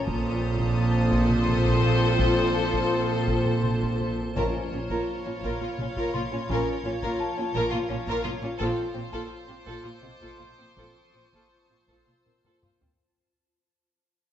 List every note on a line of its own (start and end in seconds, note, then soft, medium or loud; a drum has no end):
0.06 4.13 A#1 medium
0.06 4.13 A#2 medium
0.06 4.01 F3 medium
0.06 4.01 C4 medium
0.06 4.33 F4 medium
0.06 4.13 F4 medium
0.06 4.13 A4 medium
0.06 4.37 C5 medium
0.06 4.13 C5 medium
0.06 3.96 A5 medium
0.06 4.37 A5 medium
0.06 3.23 D#6 medium
0.06 taiko medium
0.59 taiko medium
1.11 taiko medium
1.30 taiko mid soft
1.47 taiko mid medium
1.65 taiko medium
1.83 taiko mid medium
2.19 taiko medium
2.54 4.68 A5 soft
2.73 taiko medium
3.27 taiko medium
3.46 taiko mid soft
3.63 5.74 C6 soft
3.63 taiko mid soft
3.82 taiko medium
4.00 taiko mid soft
4.36 4.44 A#1 medium
4.36 4.44 A#2 medium
4.36 5.40 A#2 medium
4.36 4.62 F3 medium
4.36 4.62 C#4 medium
4.36 4.53 F4 medium
4.36 8.56 F4 medium
4.36 4.53 A#4 medium
4.36 8.55 C#5 medium
4.36 8.60 C#5 medium
4.36 8.60 F5 medium
4.36 8.21 A#5 soft
4.36 6.81 F6 soft
4.36 taiko medium
4.72 4.79 A#1 soft
4.72 4.80 A#2 soft
4.72 4.80 C#4 soft
4.72 4.80 F4 soft
4.90 4.97 A#2 medium
4.90 5.07 F4 medium
4.90 5.07 A#4 medium
4.90 taiko medium
5.08 8.21 B5 soft
5.25 5.33 A#2 soft
5.25 5.33 C#4 soft
5.25 5.33 F4 medium
5.43 5.50 A#1 medium
5.43 5.51 A#2 medium
5.43 5.59 F4 medium
5.43 5.60 A#4 medium
5.43 taiko medium
5.61 5.69 A#2 medium
5.61 5.68 F4 soft
5.61 5.69 F4 soft
5.61 taiko mid soft
5.78 5.85 A#1 soft
5.78 5.86 A#2 medium
5.78 5.87 C#4 soft
5.78 5.85 F4 medium
5.78 taiko mid medium
5.96 6.04 A#2 medium
5.96 6.12 F4 medium
5.96 6.13 A#4 medium
5.96 taiko medium
6.14 6.21 A#1 soft
6.14 6.22 A#2 medium
6.14 6.21 F4 medium
6.14 6.22 F4 medium
6.14 8.21 C6 medium
6.14 taiko mid medium
6.32 6.40 A#2 medium
6.32 6.39 C#4 medium
6.32 6.39 F4 medium
6.49 6.56 A#1 medium
6.49 6.57 A#2 medium
6.49 6.74 F3 medium
6.49 6.74 C#4 medium
6.49 6.66 F4 medium
6.49 6.67 A#4 medium
6.49 taiko medium
6.84 6.91 A#1 medium
6.84 6.92 A#2 medium
6.84 6.92 C#4 medium
6.84 6.91 F4 medium
7.02 7.09 A#2 medium
7.02 7.19 F4 loud
7.02 7.18 A#4 medium
7.02 taiko medium
7.20 9.27 A5 medium
7.37 7.45 A#2 medium
7.37 7.44 C#4 medium
7.37 7.45 F4 medium
7.54 7.61 A#1 loud
7.54 7.62 A#2 medium
7.54 7.72 F4 loud
7.54 7.71 A#4 loud
7.54 taiko medium
7.71 7.79 A#2 medium
7.71 7.78 F4 medium
7.71 7.80 F4 medium
7.71 taiko mid medium
7.89 7.97 A#1 medium
7.89 7.96 A#2 medium
7.89 7.96 C#4 medium
7.89 7.98 F4 medium
7.89 9.98 F5 medium
7.89 taiko mid medium
8.06 8.13 A#2 loud
8.06 8.24 F4 loud
8.06 8.24 A#4 loud
8.06 taiko medium
8.24 8.32 A#1 medium
8.24 8.31 A#2 medium
8.24 8.31 F4 medium
8.24 8.32 F4 medium
8.24 taiko mid medium
8.41 8.49 A#2 medium
8.41 8.49 C#4 medium
8.41 8.50 F4 medium
8.59 8.67 A#1 loud
8.59 8.66 A#2 loud
8.59 8.85 F3 medium
8.59 8.85 C4 medium
8.59 12.95 F4 medium
8.59 8.76 F4 loud
8.59 8.75 A4 medium
8.59 12.99 C5 medium
8.59 12.75 C5 loud
8.59 12.99 A5 medium
8.59 12.58 C6 medium
8.59 11.03 D6 medium
8.59 taiko medium
8.94 9.02 A#1 medium
8.94 9.02 A#2 medium
8.94 9.02 C4 medium
8.94 9.02 F4 medium
9.12 9.19 A#2 loud
9.12 9.29 F4 loud
9.12 9.29 A4 medium
9.12 taiko medium
9.48 9.55 A#2 medium
9.48 9.55 C4 medium
9.48 9.56 F4 medium
9.66 9.74 A#1 medium
9.66 9.74 A#2 medium
9.66 9.83 F4 medium
9.66 9.83 A4 medium
9.66 taiko medium
9.84 9.91 A#2 medium
9.84 9.92 F4 medium
9.84 taiko mid soft
10.02 10.10 A#1 soft
10.02 10.10 A#2 medium
10.02 10.10 C4 soft
10.02 10.10 F4 medium
10.02 12.22 D#5 soft
10.02 11.95 D#6 soft
10.02 taiko mid medium
10.20 10.28 A#2 medium
10.20 10.38 F4 medium
10.20 10.38 A4 medium
10.20 taiko medium
10.39 10.47 A#1 soft
10.39 10.47 A#2 medium
10.39 10.47 F4 soft
10.39 10.47 F4 medium
10.39 taiko mid medium
10.58 10.65 A#2 soft
10.58 10.66 C4 soft
10.58 10.66 F4 soft
10.75 10.84 A#1 medium
10.75 10.84 A#2 medium
10.75 11.02 F3 soft
10.75 11.02 C4 soft
10.75 10.94 F4 soft
10.75 10.94 A4 medium
10.75 taiko medium
11.03 11.84 C#6 medium
11.14 11.21 A#1 soft
11.14 11.21 A#2 soft
11.14 11.22 C4 soft
11.14 11.21 F4 soft
11.32 11.40 A#2 medium
11.32 11.50 F4 soft
11.32 11.50 A4 soft
11.32 taiko medium
11.70 11.77 A#2 soft
11.70 11.77 C4 soft
11.70 11.77 F4 soft
11.88 11.95 A#1 soft
11.88 11.96 A#2 soft
11.88 12.06 F4 medium
11.88 12.06 A4 soft
11.88 taiko medium
11.95 12.59 E6 soft
12.07 12.14 A#2 soft
12.07 12.14 F4 soft
12.07 12.15 F4 soft
12.07 taiko mid soft
12.25 12.33 A#1 soft
12.25 12.33 A#2 soft
12.25 12.34 C4 soft
12.25 12.33 F4 soft
12.25 12.96 A#4 soft
12.25 taiko mid medium
12.44 12.51 A#2 soft
12.44 12.62 F4 medium
12.44 12.62 A4 soft
12.44 taiko low-mid medium
12.62 12.71 A#1 soft
12.62 12.69 A#2 soft
12.62 12.70 F4 soft
12.62 12.71 F4 soft
12.62 taiko low-mid medium
12.81 12.88 A#2 soft
12.81 12.89 C4 soft
12.81 12.89 F4 soft
12.81 taiko low medium